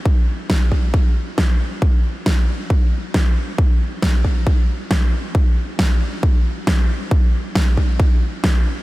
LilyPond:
\new DrumStaff \with { instrumentName = "Drums" } \drummode { \time 4/4 \tempo 4 = 136 bd4 <bd sn>8 bd8 bd4 <bd sn>4 | bd4 <bd sn>4 bd4 <bd sn>4 | bd4 <bd sn>8 bd8 bd4 <bd sn>4 | bd4 <bd sn>4 bd4 <bd sn>4 |
bd4 <bd sn>8 bd8 bd4 <bd sn>4 | }